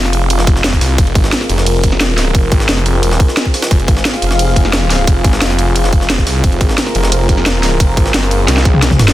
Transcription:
Already playing: detuned saw bass F1, analog synth pad C4 F4 G#4 F5
0.05 snare
0.13 closed hi-hat, ride
0.30 closed hi-hat, ride
0.39 snare
0.47 kick, closed hi-hat, ride
0.56 snare
0.64 snare, closed hi-hat, ride
0.73 kick, snare
0.81 detuned saw bass C2, snare, open hi-hat, ride
0.98 detuned saw bass F1, analog synth pad A#4, kick, closed hi-hat, ride
1.07 ride
1.15 detuned saw bass G#1, kick, closed hi-hat, ride
1.24 snare
1.32 snare, closed hi-hat, ride
1.41 snare
1.49 detuned saw bass F1, closed hi-hat, ride
1.58 snare
1.66 closed hi-hat, ride
1.83 kick, closed hi-hat, ride
1.92 snare
2.01 snare, closed hi-hat, ride
2.18 snare, open hi-hat, ride
2.35 detuned saw bass F1, kick, closed hi-hat, ride
2.52 detuned saw bass G#1, kick, closed hi-hat, ride
2.60 snare
2.69 detuned saw bass F1, snare, closed hi-hat, open hi-hat
2.77 snare
2.86 closed hi-hat, ride
3.03 closed hi-hat, ride
3.11 snare
3.20 kick, closed hi-hat, ride
3.28 snare
3.37 snare, closed hi-hat, ride
3.45 kick
3.54 snare, open hi-hat, ride
3.62 snare, ride
3.71 detuned saw bass F1, analog synth pad F5, kick, closed hi-hat, ride
3.80 ride
3.88 detuned saw bass G#1, kick, closed hi-hat, ride
3.97 snare
4.05 snare, closed hi-hat, ride
4.14 snare
4.22 detuned saw bass F1, closed hi-hat, ride
4.31 snare
4.39 closed hi-hat, ride
4.56 kick, closed hi-hat, ride
4.65 snare
4.73 snare, closed hi-hat, ride
4.90 snare, open hi-hat, ride
5.07 detuned saw bass F1, kick, closed hi-hat, ride
5.24 detuned saw bass G#1, kick, closed hi-hat, ride
5.33 snare
5.41 detuned saw bass F1, snare, closed hi-hat, open hi-hat
5.50 snare
5.59 closed hi-hat, ride
5.76 closed hi-hat, ride
5.84 snare
5.93 kick, closed hi-hat, ride
6.01 snare
6.10 snare, closed hi-hat, ride
6.18 kick, snare
6.27 detuned saw bass C2, snare, open hi-hat, ride
6.44 detuned saw bass F1, analog synth pad A#4, kick, closed hi-hat, ride
6.52 ride
6.61 detuned saw bass G#1, kick, closed hi-hat, ride
6.69 snare
6.78 snare, closed hi-hat, ride
6.86 snare
6.95 detuned saw bass F1, closed hi-hat, ride
7.03 snare
7.12 closed hi-hat, ride
7.29 kick, closed hi-hat, ride
7.38 snare
7.46 snare, closed hi-hat, ride
7.63 snare, open hi-hat, ride
7.80 detuned saw bass F1, kick, closed hi-hat, ride
7.97 detuned saw bass G#1, kick, closed hi-hat, ride
8.06 snare
8.14 detuned saw bass F#1, snare, closed hi-hat, open hi-hat
8.23 snare
8.31 closed hi-hat, ride
8.48 detuned saw bass C2, snare, closed hi-hat, ride
8.57 snare
8.65 kick, closed hi-hat
8.74 mid tom
8.82 snare, closed hi-hat, ride
8.91 kick, snare, mid tom
8.99 snare, mid tom, open hi-hat, ride
9.08 snare, ride

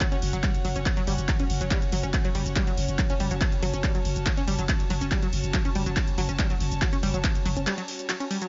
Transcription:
Already playing: string section C#4 F#4 C#5 F#5
0.01 synth arpeggio sound F#3, kick, clap, closed hi-hat, ride, shaker
0.12 synth arpeggio sound C#4, closed hi-hat, shaker
0.22 808-style bass F#1, open hi-hat
0.33 808-style bass F#1, synth arpeggio sound F#3, closed hi-hat, shaker
0.43 synth arpeggio sound G3, kick, clap, closed hi-hat, ride, shaker
0.55 closed hi-hat, shaker
0.65 808-style bass F#1, synth arpeggio sound F#3, open hi-hat
0.76 808-style bass F#1, synth arpeggio sound C#4, closed hi-hat, shaker
0.86 kick, clap, closed hi-hat, ride, shaker
0.97 synth arpeggio sound F#3, closed hi-hat, shaker
1.07 808-style bass F#1, synth arpeggio sound G3, open hi-hat
1.18 808-style bass F#1, closed hi-hat, shaker
1.29 synth arpeggio sound F#3, kick, clap, closed hi-hat, ride, shaker
1.40 synth arpeggio sound C#4, closed hi-hat, shaker
1.50 808-style bass F#1, open hi-hat
1.61 808-style bass F#1, synth arpeggio sound F#3, closed hi-hat, shaker
1.71 synth arpeggio sound G3, kick, clap, closed hi-hat, ride, shaker
1.82 closed hi-hat, shaker
1.92 808-style bass F#1, synth arpeggio sound F#3, open hi-hat
2.03 808-style bass F#1, synth arpeggio sound C#4, closed hi-hat, shaker
2.14 kick, clap, closed hi-hat, ride, shaker
2.25 synth arpeggio sound F#3, closed hi-hat, shaker
2.35 808-style bass F#1, synth arpeggio sound G3, open hi-hat
2.46 808-style bass F#1, closed hi-hat, shaker
2.56 synth arpeggio sound G3, kick, clap, closed hi-hat, ride, shaker
2.67 synth arpeggio sound F#3, closed hi-hat, shaker
2.77 808-style bass F#1, open hi-hat
2.88 808-style bass F#1, closed hi-hat, shaker
2.99 synth arpeggio sound F#3, kick, clap, closed hi-hat, ride, shaker
3.07 synth arpeggio sound C#4, string section A5, closed hi-hat, shaker
3.20 808-style bass F#1, synth arpeggio sound G3, open hi-hat
3.31 808-style bass F#1, synth arpeggio sound F#3, closed hi-hat, shaker
3.41 kick, clap, closed hi-hat, ride, shaker
3.52 closed hi-hat, shaker
3.63 808-style bass F#1, synth arpeggio sound F#3, open hi-hat
3.74 808-style bass F#1, synth arpeggio sound C#4, closed hi-hat, shaker
3.84 synth arpeggio sound G3, kick, clap, closed hi-hat, ride, shaker
3.95 synth arpeggio sound F#3, closed hi-hat, shaker
4.05 808-style bass F#1, open hi-hat
4.16 808-style bass F#1, closed hi-hat, shaker
4.26 synth arpeggio sound F#3, kick, clap, closed hi-hat, ride, shaker
4.37 synth arpeggio sound C#4, closed hi-hat, shaker
4.48 808-style bass F#1, synth arpeggio sound G3, open hi-hat
4.59 808-style bass F#1, synth arpeggio sound F#3, closed hi-hat, shaker
4.69 kick, clap, closed hi-hat, ride, shaker
4.80 closed hi-hat, shaker
4.90 808-style bass F#1, synth arpeggio sound F#3, open hi-hat
5.01 808-style bass F#1, synth arpeggio sound C#4, closed hi-hat, shaker
5.11 synth arpeggio sound G3, kick, clap, closed hi-hat, ride, shaker
5.23 synth arpeggio sound F#3, closed hi-hat, shaker
5.33 808-style bass F#1, open hi-hat
5.44 808-style bass F#1, closed hi-hat, shaker
5.54 synth arpeggio sound F#3, kick, clap, closed hi-hat, ride, shaker
5.65 synth arpeggio sound C#4, closed hi-hat, shaker
5.75 808-style bass F#1, synth arpeggio sound G3, open hi-hat
5.86 808-style bass F#1, synth arpeggio sound F#3, closed hi-hat, shaker
5.97 kick, clap, closed hi-hat, ride, shaker
6.08 closed hi-hat, shaker
6.18 808-style bass F#1, synth arpeggio sound F#3, open hi-hat
6.29 808-style bass F#1, synth arpeggio sound C#4, closed hi-hat, shaker
6.39 synth arpeggio sound G3, kick, clap, closed hi-hat, ride, shaker
6.50 synth arpeggio sound F#3, closed hi-hat, shaker
6.60 808-style bass F#1, open hi-hat
6.71 808-style bass F#1, closed hi-hat, shaker
6.82 synth arpeggio sound F#3, kick, clap, closed hi-hat, ride, shaker
6.93 synth arpeggio sound C#4, closed hi-hat, shaker
7.03 808-style bass F#1, synth arpeggio sound G3, open hi-hat
7.14 808-style bass F#1, synth arpeggio sound F#3, closed hi-hat, shaker
7.24 kick, clap, closed hi-hat, ride, shaker
7.35 closed hi-hat, shaker
7.46 808-style bass F#1, synth arpeggio sound F#3, open hi-hat
7.57 808-style bass F#1, synth arpeggio sound C#4, closed hi-hat, shaker
7.67 synth arpeggio sound G3, clap, closed hi-hat, ride, shaker
7.78 synth arpeggio sound F#3, closed hi-hat, shaker
7.88 open hi-hat
7.99 closed hi-hat, shaker
8.09 synth arpeggio sound F#3, clap, closed hi-hat, ride, shaker
8.20 synth arpeggio sound C#4, closed hi-hat, shaker
8.31 synth arpeggio sound G3, open hi-hat
8.42 synth arpeggio sound F#3, closed hi-hat, shaker

